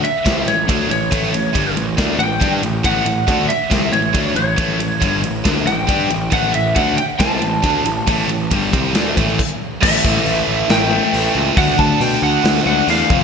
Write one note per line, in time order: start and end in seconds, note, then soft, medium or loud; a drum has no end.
0.04 0.44 E5 medium
0.04 muted distorted electric guitar stroke medium
0.04 muted picked electric bass stroke soft
0.04 muted overdriven electric guitar stroke medium
0.04 ride medium
0.25 0.46 C2 medium
0.25 0.46 C3 medium
0.25 0.47 G3 loud
0.25 0.47 C4 medium
0.25 kick medium
0.25 snare loud
0.25 ride medium
0.46 0.67 A1 medium
0.46 0.64 A2 medium
0.46 0.64 E3 medium
0.46 0.88 C#5 medium
0.46 snare soft
0.46 ride medium
0.67 0.89 D2 medium
0.67 0.89 D3 medium
0.67 0.89 A3 loud
0.67 0.89 D4 medium
0.67 kick loud
0.67 ride medium
0.89 1.10 A1 medium
0.89 1.07 A2 medium
0.89 1.07 E3 medium
0.89 1.73 C#5 medium
0.89 ride medium
1.11 1.32 A1 medium
1.11 1.31 A2 medium
1.11 1.32 E3 medium
1.11 1.33 A3 loud
1.11 kick medium
1.11 ride medium
1.32 1.53 A1 medium
1.32 1.50 A2 medium
1.32 1.51 E3 medium
1.32 ride medium
1.54 1.75 G1 medium
1.54 1.75 G2 medium
1.54 1.75 D3 medium
1.54 1.76 G3 medium
1.54 kick medium
1.54 ride medium
1.75 1.96 A1 medium
1.75 1.93 A2 medium
1.75 1.94 E3 medium
1.75 ride medium
1.97 2.18 D2 medium
1.97 2.18 D3 medium
1.97 2.19 A3 medium
1.97 2.19 D4 loud
1.97 kick medium
1.97 snare loud
1.97 ride medium
2.19 2.39 A1 medium
2.19 2.37 A2 medium
2.19 2.37 E3 medium
2.19 2.60 G5 medium
2.19 ride medium
2.40 2.61 G2 medium
2.40 2.61 G3 medium
2.40 2.62 D4 medium
2.40 2.62 G4 medium
2.40 kick loud
2.40 ride medium
2.62 2.83 A1 medium
2.62 2.80 A2 medium
2.62 2.80 E3 medium
2.62 ride medium
2.84 3.05 A1 medium
2.84 3.04 A2 medium
2.84 3.04 E3 medium
2.84 3.06 A3 loud
2.84 3.48 F#5 loud
2.84 kick medium
2.84 ride medium
3.05 3.26 A1 medium
3.05 3.23 A2 medium
3.05 3.23 E3 medium
3.05 ride medium
3.26 3.48 D2 medium
3.26 3.48 D3 medium
3.26 3.48 A3 medium
3.26 3.49 D4 medium
3.26 kick loud
3.26 ride medium
3.49 3.89 E5 medium
3.49 muted overdriven electric guitar stroke medium
3.49 muted picked electric bass stroke soft
3.49 muted distorted electric guitar stroke soft
3.49 ride medium
3.70 3.91 C2 medium
3.70 3.92 C3 medium
3.70 3.92 G3 loud
3.70 3.92 C4 loud
3.70 kick loud
3.70 snare medium
3.70 ride medium
3.92 4.13 A1 medium
3.92 4.10 A2 medium
3.92 4.10 E3 medium
3.92 4.33 C#5 medium
3.92 ride medium
4.14 4.35 D2 medium
4.14 4.35 D3 medium
4.14 4.35 A3 medium
4.14 4.36 D4 medium
4.14 kick medium
4.14 ride medium
4.35 4.56 A1 medium
4.35 4.53 A2 medium
4.35 4.53 E3 medium
4.35 5.19 C#5 medium
4.35 ride medium
4.57 4.78 A1 medium
4.57 4.79 A2 medium
4.57 4.79 E3 medium
4.57 4.79 A3 loud
4.57 kick loud
4.57 ride medium
4.80 5.00 A1 medium
4.80 4.97 A2 medium
4.80 4.97 E3 medium
4.80 ride medium
5.01 5.22 G1 medium
5.01 5.22 G2 medium
5.01 5.22 D3 medium
5.01 5.23 G3 medium
5.01 kick medium
5.01 ride medium
5.22 5.43 A1 medium
5.22 5.41 A2 medium
5.22 5.41 E3 medium
5.22 ride medium
5.44 5.65 D2 medium
5.44 5.66 D3 medium
5.44 5.66 A3 medium
5.44 5.66 D4 medium
5.44 kick medium
5.44 snare medium
5.44 ride medium
5.66 5.86 A1 medium
5.66 5.84 A2 medium
5.66 5.84 E3 medium
5.66 6.33 G5 medium
5.66 snare soft
5.66 ride medium
5.88 6.09 G2 medium
5.88 6.09 G3 medium
5.88 6.10 D4 medium
5.88 6.10 G4 loud
5.88 kick medium
5.88 ride medium
6.09 6.30 A1 medium
6.09 6.28 A2 medium
6.09 6.28 E3 medium
6.09 ride medium
6.31 6.52 A1 medium
6.31 6.52 A2 medium
6.31 6.52 E3 loud
6.31 6.54 A3 loud
6.31 6.54 F#5 loud
6.31 kick loud
6.31 ride medium
6.53 6.74 A1 medium
6.53 6.71 A2 medium
6.53 6.71 E3 medium
6.53 6.75 E5 medium
6.53 ride medium
6.74 6.96 D2 medium
6.74 6.96 D3 medium
6.74 6.97 A3 medium
6.74 6.97 D4 medium
6.74 6.96 F#5 loud
6.74 kick loud
6.74 ride medium
6.97 7.03 G5 medium
6.97 muted overdriven electric guitar stroke medium
6.97 muted distorted electric guitar stroke medium
6.97 muted picked electric bass stroke soft
6.97 ride medium
7.19 7.40 C2 medium
7.19 7.41 C3 medium
7.19 7.41 G3 medium
7.19 7.41 C4 loud
7.19 9.34 A5 loud
7.19 kick medium
7.19 snare loud
7.19 ride medium
7.41 7.62 A1 medium
7.41 7.59 A2 medium
7.41 7.59 E3 medium
7.41 ride medium
7.64 7.84 D2 medium
7.64 7.85 D3 medium
7.64 7.85 A3 loud
7.64 7.85 D4 medium
7.64 kick medium
7.64 ride medium
7.85 8.06 A1 medium
7.85 8.03 A2 medium
7.85 8.03 E3 medium
7.85 ride medium
8.07 8.28 A1 medium
8.07 8.28 A2 medium
8.07 8.28 E3 medium
8.07 8.29 A3 loud
8.07 kick medium
8.07 ride medium
8.28 8.49 A1 medium
8.28 8.47 A2 medium
8.28 8.47 E3 medium
8.28 ride medium
8.51 8.71 G1 medium
8.51 8.72 G2 medium
8.51 8.72 D3 medium
8.51 8.72 G3 medium
8.51 kick medium
8.51 ride medium
8.73 8.93 C2 medium
8.73 8.94 C3 medium
8.73 8.94 G3 medium
8.73 8.95 C4 medium
8.73 kick loud
8.73 ride medium
8.94 9.15 D2 medium
8.94 9.16 D3 medium
8.94 9.16 A3 medium
8.94 9.16 D4 medium
8.94 snare medium
8.94 ride medium
9.16 9.37 A1 medium
9.16 9.38 A2 medium
9.16 9.38 E3 medium
9.16 9.38 A3 loud
9.16 kick loud
9.16 snare soft
9.16 ride medium
9.39 kick medium
9.39 crash medium
9.82 9.97 A1 medium
9.82 10.90 A2 medium
9.82 10.91 E3 medium
9.82 10.89 A3 medium
9.82 10.71 E5 medium
9.82 kick loud
9.82 crash loud
10.05 10.19 A1 loud
10.05 kick medium
10.17 snare soft
10.26 10.40 A1 medium
10.26 open hi-hat medium
10.48 10.62 A1 medium
10.69 10.99 A1 medium
10.69 11.55 A2 medium
10.69 11.57 E3 medium
10.69 11.59 A3 medium
10.69 11.57 G5 loud
10.69 snare loud
10.69 open hi-hat medium
10.90 11.11 A2 medium
10.90 11.12 E3 medium
10.90 11.15 A3 medium
11.12 11.28 A1 medium
11.12 11.55 A2 medium
11.12 11.56 E3 medium
11.12 11.58 A3 medium
11.12 open hi-hat medium
11.35 11.50 C#2 medium
11.56 11.71 D2 medium
11.56 12.64 D3 loud
11.56 12.65 A3 medium
11.56 12.63 D4 loud
11.56 11.78 F#5 loud
11.56 kick loud
11.56 open hi-hat medium
11.79 11.93 D2 loud
11.79 12.01 A5 loud
11.79 kick medium
12.01 12.15 B2 medium
12.01 12.23 G5 loud
12.01 open hi-hat medium
12.22 12.37 D2 loud
12.22 12.65 F#5 medium
12.43 12.59 D2 medium
12.43 13.08 D3 medium
12.43 13.09 A3 medium
12.43 snare loud
12.43 open hi-hat medium
12.47 13.10 D4 medium
12.64 12.81 D2 medium
12.64 12.86 D3 medium
12.64 12.87 A3 medium
12.64 12.86 D4 medium
12.64 12.89 F#5 medium
12.87 13.02 E2 medium
12.87 13.08 D3 medium
12.87 13.09 A3 medium
12.87 13.10 D4 medium
12.87 13.20 F5 medium
12.87 open hi-hat medium
13.09 13.24 F1 medium
13.09 13.24 F2 medium
13.09 13.24 C3 medium
13.09 13.24 F3 medium
13.09 kick medium